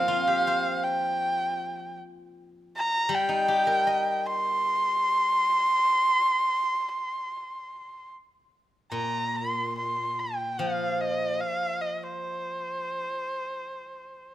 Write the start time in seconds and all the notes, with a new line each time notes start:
Already playing: F3 C4 A#4 F5
0.08 F4
0.27 G4
0.47 C5
0.83 G5
2.76 A#5
3.09 G3
3.15 G5
3.29 D#4
3.48 G4
3.67 A#4
3.87 D#5
4.26 C6
8.92 A#2 A#5
9.35 C6
9.78 C6
10.19 G5
10.59 F3 F5
11.00 D#5
11.40 F5
11.81 D#5
12.03 C5